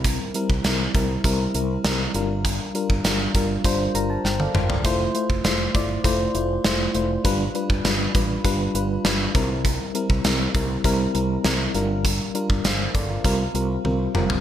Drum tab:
HH |x-x-x-x-x-x-x-x-|x-x-x-x-x-x-----|x-x-x-x-x-x-x-x-|x-x-x-x-x-x-x-x-|
SD |----o-------o---|----o-------o---|----o-------o---|----o-------o---|
T1 |----------------|-------------o--|----------------|----------------|
T2 |----------------|--------------o-|----------------|----------------|
FT |----------------|---------------o|----------------|----------------|
BD |o--o--o-o-------|o--o--o-o-------|o--o--o-o-------|o--o--o-o-----o-|

HH |x-x-x-x-x-x-x-x-|x-x-x-x-x-x-----|
SD |----o-------o---|----o-----------|
T1 |----------------|------------o---|
T2 |----------------|--------------o-|
FT |----------------|---------------o|
BD |o--o--o-o-------|o--o--o-o-------|